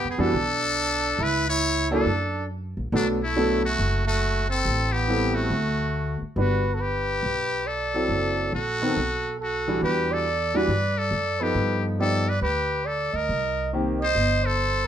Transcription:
0.04 F#2
0.08 B3 G#4
0.18 F2 E3 G3 B3 D4 F#4 A4
0.33 B1
1.19 C#2 E4
1.23 B4
1.48 E4 C#5
1.91 F#3 A#3 D4 E4 A4
2.06 F#2
2.77 A#1
2.92 B1 F#3 A3 B3 D4 A4
3.21 A3 E4
3.36 F#3 A3 B3 D4 A4
3.64 A3 F#4
3.79 F#1
4.05 A3 F#4
4.49 C4 A4
4.65 A1
4.92 B3 G4
5.08 G3 B3 C4 E4 A4
5.34 A3 F#4
5.50 D2
6.21 muted upright bass stroke
6.36 G1 G3 D4 F#4 B4
6.74 F#4 A4
6.80 G4 B4
7.23 B1
7.66 A4 D5
7.94 F#3 C4 E4 A4
8.09 F#1
8.53 A#1 F#4 A4
8.82 D#3 B3 C4 A4
8.97 B1
9.39 A4
9.43 F#4
9.68 E3 G3 D4 F#4
9.82 E2 G4 B4
10.11 A4 D5
10.54 E3 G3 D4 F#4 B4 D5
10.68 G2
10.97 A4 D5
11.11 F#2
11.40 F3 B3 D#4 G4 A4 B4
11.55 G2
11.99 F3 B3 D#4 G4 A4 D5
12.28 B4 D5
12.41 D2 G4 B4
12.85 A4 D5
13.13 D2 A#4 D#5
13.29 C2
13.73 D#3 A#3 C4 G4
14.00 C5 D#5
14.15 G1
14.44 A4 C5

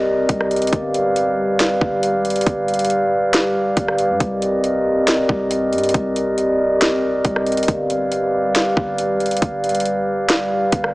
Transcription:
Already playing: C2 C4 G4 A#4 D5 D#5
0.29 C2, kick, closed hi-hat
0.41 cross-stick
0.51 closed hi-hat
0.56 closed hi-hat
0.62 closed hi-hat
0.67 closed hi-hat
0.73 G1 G3 B4 F5, kick, closed hi-hat
0.94 closed hi-hat
1.16 closed hi-hat
1.59 snare, closed hi-hat
1.81 G1, kick
2.03 closed hi-hat
2.14 G#1
2.25 closed hi-hat
2.30 G1, closed hi-hat
2.36 closed hi-hat
2.41 closed hi-hat
2.47 G1, kick, closed hi-hat
2.68 closed hi-hat
2.74 closed hi-hat
2.79 closed hi-hat
2.85 closed hi-hat
2.90 closed hi-hat
3.33 snare, closed hi-hat
3.77 G1, kick, closed hi-hat
3.88 cross-stick
3.98 closed hi-hat
4.10 G2
4.20 C2 C4 A#4 D#5, kick, closed hi-hat
4.42 closed hi-hat
4.64 closed hi-hat
5.07 snare, closed hi-hat
5.29 C2, kick
5.51 closed hi-hat
5.73 G2, closed hi-hat
5.78 closed hi-hat
5.83 closed hi-hat
5.89 closed hi-hat
5.94 C2, kick, closed hi-hat
6.16 closed hi-hat
6.38 closed hi-hat
6.81 snare, closed hi-hat
7.25 C2, kick, closed hi-hat
7.36 cross-stick
7.46 closed hi-hat
7.52 closed hi-hat
7.57 closed hi-hat
7.63 closed hi-hat
7.68 G1 G3 G4 B4 D5 F5, kick, closed hi-hat
7.90 closed hi-hat
8.12 closed hi-hat
8.55 snare, closed hi-hat
8.77 G1, kick
8.98 closed hi-hat
9.09 G#1
9.20 closed hi-hat
9.26 G1, closed hi-hat
9.31 closed hi-hat
9.37 closed hi-hat
9.42 G1, kick, closed hi-hat
9.64 closed hi-hat
9.69 closed hi-hat
9.75 closed hi-hat
9.80 closed hi-hat
9.85 closed hi-hat
10.29 snare, closed hi-hat
10.72 G1, kick, closed hi-hat
10.84 cross-stick

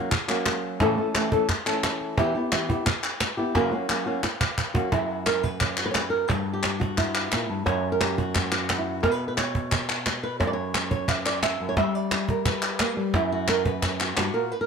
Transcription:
Already playing: F#3 A#3 C#4 F#4
0.11 muted nylon-string guitar stroke, cajon bass, clap
0.28 F#3 A#3 C#4 F#4, clap
0.46 cajon slap, clap
0.63 cajon slap
0.80 A2 C#3 E3 A3 C#4 A4, cajon bass, cajon slap
0.97 E3 A3 C#4 A4
1.14 E3 A3 C#4 A4, cajon slap, clap
1.32 E3 A3 C#4 A4, cajon bass
1.49 muted nylon-string guitar stroke, cajon bass, cajon slap, clap
1.66 E3 A3 C#4 A4, clap
1.83 cajon slap, clap
2.01 cajon slap
2.18 E3 B3 E4 G4, cajon bass
2.35 B3 E4 G4
2.52 E3 B3 E4 G4, cajon slap, clap
2.69 B3 E4 G4, cajon bass
2.86 muted nylon-string guitar stroke, cajon bass, clap
3.03 clap
3.21 cajon slap, clap
3.37 B3 E4 G4, cajon slap
3.55 F#2 C#3 F#3 A#3 C#4 F#4, cajon bass, cajon slap
3.71 F#3 A#3 C#4 F#4
3.89 F#3 A#3 C#4 F#4, cajon slap, clap
4.06 F#3 A#3 C#4 F#4
4.23 muted nylon-string guitar stroke, cajon slap, clap
4.41 cajon bass, clap
4.58 cajon bass, clap
4.74 F#3 A#3 C#4 F#4, cajon bass
4.92 F#2 E4, cajon bass, clap
5.10 F#4
5.26 A#4, cajon slap, clap
5.43 B4, cajon bass
5.60 C#5, cajon bass, clap
5.77 F#4, clap
5.86 B4
5.91 C#5, cajon slap, clap
5.98 B4
6.10 A#4
6.28 G2 B4, cajon bass
6.53 G4
6.63 cajon slap, clap
6.80 F#4, cajon bass
6.98 E4, cajon bass, cajon slap, clap
7.15 clap
7.32 A#2, cajon slap, clap
7.49 G2, cajon slap
7.66 F#2 C#5, cajon bass, cajon slap
7.92 A#4
8.01 G4, cajon slap, clap
8.18 F#4, cajon bass
8.35 G4, cajon bass, cajon slap, clap
8.52 F#4, clap
8.69 cajon slap, clap
8.78 E4
8.87 cajon slap
8.94 F#4
9.03 B2 A#4, cajon bass, cajon slap, clap
9.12 B4
9.28 B4
9.37 C#5, cajon slap, clap
9.55 cajon bass
9.72 cajon bass, clap
9.89 F#4, clap
10.06 cajon slap, clap
10.23 B4, cajon slap
10.40 F#2 C#5, cajon bass, cajon slap
10.47 D5
10.53 C#5
10.74 cajon slap, clap
10.91 C#5, cajon bass
11.08 E5, cajon bass, clap
11.26 D5, clap
11.43 E5, cajon slap, clap
11.60 F#2, cajon slap
11.69 C#5
11.77 G3 E5, cajon bass, cajon slap
11.95 D5
12.11 cajon slap, clap
12.28 A#4, cajon bass
12.46 B4, cajon bass, clap
12.62 clap
12.79 A#3, cajon slap, clap
12.97 G3
13.13 F#2 E4, cajon bass, cajon slap
13.32 F#4
13.48 A#4, cajon slap, clap
13.66 B4, cajon bass
13.83 C#5, cajon bass, cajon slap, clap
14.00 F#4, clap
14.17 G2 F#4, cajon slap, clap
14.34 A#2 A#4
14.52 B4
14.61 A#4

